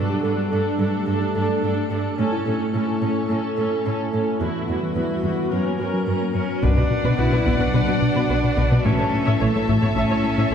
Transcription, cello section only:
0.24 0.32 G2 soft
0.53 0.61 G2 medium
0.80 0.88 G2 medium
1.07 1.15 G2 soft
1.36 1.44 G2 soft
1.63 1.71 G2 soft
1.91 1.99 G2 soft
2.19 2.27 A2 medium
2.47 2.55 A2 medium
2.75 2.83 A2 soft
3.02 3.10 A2 soft
3.30 3.38 A2 medium
3.58 3.66 A2 soft
3.86 3.94 A2 medium
4.13 4.21 A2 soft
4.41 4.49 E2 soft
4.69 4.77 E2 soft
4.96 5.04 E2 soft
5.24 5.32 E2 soft
5.52 5.60 F#2 soft
5.79 5.87 F#2 soft
6.08 6.16 F#2 soft
6.35 6.43 F#2 soft
6.63 6.69 B2 soft
6.77 6.83 B2 soft
7.05 7.11 B2 soft
7.19 7.24 B2 soft
7.32 7.38 B2 soft
7.46 7.52 B2 soft
7.60 7.65 B2 soft
7.74 7.79 B2 soft
7.88 7.94 B2 soft
8.15 8.21 B2 soft
8.30 8.35 B2 soft
8.57 8.63 B2 soft
8.72 8.77 B2 soft
8.85 8.91 A2 medium
8.99 9.04 A2 soft
9.26 9.32 A2 soft
9.40 9.46 A2 soft
9.54 9.60 A2 soft
9.68 9.74 A2 medium
9.82 9.88 A2 soft
9.96 10.02 A2 medium
10.10 10.15 A2 soft
10.38 10.43 A2 medium
10.52 10.55 A2 soft

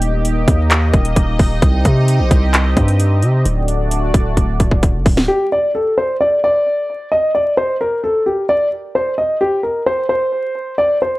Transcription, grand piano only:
5.28 5.46 G4 medium
5.52 5.70 D5 medium
5.75 5.93 A4 medium
5.98 6.16 C5 medium
6.21 6.39 D5 medium
6.44 7.08 D5 medium
7.12 7.30 D#5 medium
7.35 7.53 D5 medium
7.57 7.76 C5 medium
7.81 7.99 A#4 medium
8.04 8.22 A4 medium
8.26 8.44 G4 medium
8.49 8.67 D5 medium
8.95 9.13 C5 medium
9.18 9.36 D#5 medium
9.41 9.59 G4 medium
9.63 9.82 A#4 medium
9.86 10.05 C5 medium
10.09 10.74 C5 medium
10.78 10.96 D5 medium
11.02 11.19 C5 medium

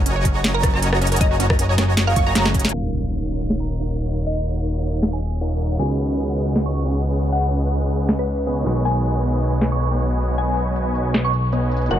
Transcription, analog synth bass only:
0.00 0.71 F#1 loud
0.73 1.19 F#1 loud
1.21 2.14 F#1 loud
2.16 2.24 F#1 loud
2.27 2.34 F#1 loud
2.35 2.72 F#1 loud
2.74 5.78 D#1 medium
5.79 8.64 C#2 medium
8.66 11.89 B1 medium
11.91 11.99 F#1 medium

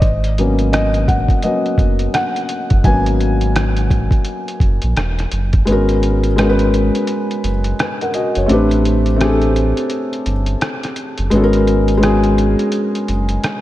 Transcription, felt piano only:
0.00 0.71 D#5 medium
0.38 0.88 F#3 medium
0.38 0.88 A#3 medium
0.38 0.88 B3 medium
0.38 0.88 C#4 medium
0.73 1.09 D#5 loud
1.08 1.16 F#5 medium
1.44 1.75 F#3 soft
1.44 1.76 A#3 soft
1.44 1.76 B3 soft
1.44 1.76 C#4 medium
1.44 2.16 D#5 loud
2.14 2.80 F#5 loud
2.85 3.87 F#3 medium
2.85 3.87 A#3 medium
2.85 3.87 B3 medium
2.85 3.87 C#4 medium
2.85 4.92 G#5 loud
5.65 6.23 G#3 medium
5.65 6.24 B3 medium
5.65 6.25 C#4 medium
5.70 6.26 F#4 medium
5.70 6.27 A#4 loud
6.36 7.43 G#3 medium
6.36 7.44 B3 medium
6.36 7.45 C#4 medium
6.41 7.46 F#4 medium
6.41 6.48 A#4 medium
6.49 7.50 B4 loud
7.81 8.01 B4 medium
7.81 8.00 G#5 medium
8.02 8.14 A#4 medium
8.02 8.14 F#5 medium
8.14 8.35 F#4 medium
8.14 8.35 D#5 medium
8.37 8.70 C#5 medium
8.46 9.05 A3 medium
8.46 9.06 C4 medium
8.46 9.07 D4 medium
8.51 9.07 G4 medium
8.51 9.08 B4 medium
9.16 10.24 A3 medium
9.16 10.25 C4 medium
9.16 10.26 D4 medium
9.21 10.27 G4 medium
9.21 9.29 G#4 medium
9.30 10.31 A4 medium
11.30 11.88 G#3 loud
11.30 11.89 B3 medium
11.30 11.90 C#4 medium
11.36 11.91 F#4 medium
11.36 11.42 A4 medium
11.44 11.95 A#4 loud
11.98 13.06 G#3 loud
11.98 13.07 B3 medium
11.98 13.08 C#4 medium
12.03 13.09 F#4 medium
12.03 13.10 G#4 loud

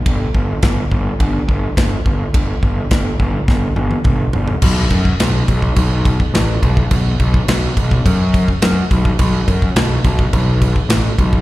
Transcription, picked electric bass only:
0.06 0.23 G1 medium
0.35 0.52 G1 medium
0.63 0.80 G1 medium
0.91 1.09 G1 medium
1.20 1.37 G1 loud
1.48 1.65 G1 medium
1.77 1.95 G1 medium
2.06 2.23 G1 medium
2.34 2.52 G1 medium
2.63 2.80 G1 medium
2.91 3.08 G1 medium
3.19 3.37 G1 medium
3.48 3.65 G1 medium
3.76 3.94 G1 loud
4.04 4.22 G1 medium
4.35 4.52 G1 medium
4.62 4.83 B1 medium
4.91 5.12 F#2 medium
5.21 5.41 B1 loud
5.48 5.69 B1 medium
5.76 6.18 B1 loud
6.34 6.55 A1 loud
6.62 6.83 B1 medium
6.91 7.12 B1 medium
7.19 7.40 B1 medium
7.48 7.69 B1 loud
7.77 7.98 B1 medium
8.06 8.47 F#2 loud
8.62 8.83 F#2 medium
8.91 9.11 B1 medium
9.19 9.40 B1 medium
9.48 9.68 F#2 medium
9.76 9.97 B1 loud
10.05 10.25 B1 medium
10.33 10.75 B1 loud
10.89 11.10 A1 medium
11.18 11.39 B1 loud

